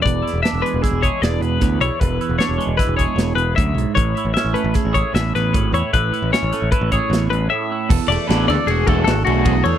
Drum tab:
CC |----------|----------|----------|----------|
RD |----------|----------|----------|----------|
HH |xxxxxxxxxx|xxxxxxxxxx|xxxxxxxxxx|xxxxxxxx--|
SD |-oo-o-o-o-|--o-o-o---|--o-o-oo--|--oo--o---|
BD |o---oo--o-|o---oo--o-|o---oo--o-|o---oo----|

CC |x---------|
RD |-xxxxxxxxx|
HH |----------|
SD |-ooo--o---|
BD |o----o--o-|